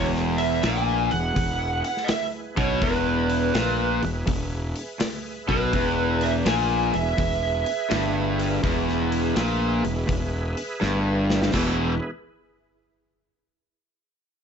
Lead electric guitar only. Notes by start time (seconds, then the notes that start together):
0.38 E5
0.64 G#5
1.11 F#5
1.85 F#5
2.04 D#5
2.11 E5
2.58 C#5
2.82 B4
5.50 B4
6.23 E5
6.47 G#5
6.95 E5